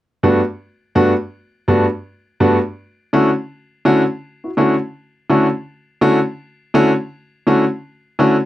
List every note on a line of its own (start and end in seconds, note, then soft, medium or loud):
0.23 0.39 G2 medium
0.23 0.39 A3 medium
0.23 0.39 B3 medium
0.23 0.39 D4 medium
0.23 0.40 F#4 medium
0.95 1.12 G2 medium
0.95 1.11 A3 medium
0.95 1.12 B3 medium
0.95 1.12 D4 medium
0.95 1.12 F#4 loud
1.68 1.84 G2 medium
1.68 1.84 A3 medium
1.68 1.84 B3 medium
1.68 1.84 D4 medium
1.68 1.84 F#4 medium
2.40 2.56 G2 medium
2.40 2.56 A3 medium
2.40 2.57 B3 medium
2.40 2.56 D4 medium
2.40 2.57 F#4 medium
3.13 3.29 D3 medium
3.13 3.29 A3 medium
3.13 3.29 C#4 medium
3.13 3.29 E4 medium
3.13 3.29 F#4 loud
3.85 4.01 D3 medium
3.85 4.01 A3 medium
3.85 4.01 C#4 medium
3.85 4.01 E4 medium
3.85 4.01 F#4 loud
4.44 4.49 E4 soft
4.44 4.49 F#4 soft
4.57 4.73 D3 medium
4.57 4.73 A3 medium
4.57 4.74 C#4 medium
4.57 4.74 E4 medium
4.57 4.74 F#4 medium
5.30 5.46 D3 medium
5.30 5.46 A3 medium
5.30 5.46 C#4 medium
5.30 5.46 E4 medium
5.30 5.46 F#4 medium
6.01 6.18 D3 loud
6.01 6.18 A3 medium
6.01 6.18 C#4 medium
6.01 6.18 E4 medium
6.01 6.18 F#4 loud
6.74 6.90 D3 loud
6.74 6.90 A3 medium
6.74 6.90 C#4 medium
6.74 6.91 E4 medium
6.74 6.91 F#4 loud
7.47 7.63 D3 medium
7.47 7.63 A3 medium
7.47 7.63 C#4 medium
7.47 7.63 E4 medium
7.47 7.63 F#4 loud
8.19 8.35 D3 medium
8.19 8.35 A3 medium
8.19 8.35 C#4 medium
8.19 8.35 E4 medium
8.19 8.35 F#4 loud